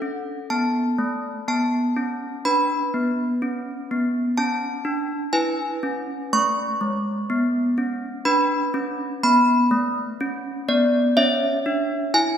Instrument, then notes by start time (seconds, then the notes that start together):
handbells
Already playing: A4 F#5
0.02 C#4
0.50 B3 A5
0.98 A3
1.48 B3 A5
1.96 C#4
2.45 D4 B4 B5
2.94 B3
3.42 C#4
3.91 B3
4.38 C#4 A5
4.85 D4
5.33 E4 B4 G#5
5.83 C#4
6.33 A3 C#6
6.81 G#3
7.30 B3
7.78 C#4
8.25 D4 B4 B5
8.74 C#4
9.23 B3 B5
9.71 A3
10.21 C#4
10.69 B3 D5
11.17 C#4 C#5 E5
11.66 D4
12.14 E4 G#5